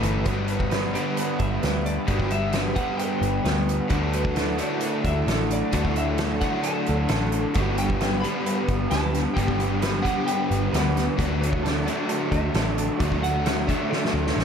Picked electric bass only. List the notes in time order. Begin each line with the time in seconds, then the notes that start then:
0.03 G1
0.26 G1
1.40 G1
1.63 D2
2.09 G1
3.21 G1
3.45 D2
3.91 D2
5.05 D2
5.27 A1
5.73 D2
6.89 D2
7.10 A1
7.56 G1
8.69 G1
8.91 D2
9.37 G1
10.51 G1
10.73 D2
11.19 D2
12.32 D2
12.54 A1
13.01 D2
14.14 D2
14.37 A1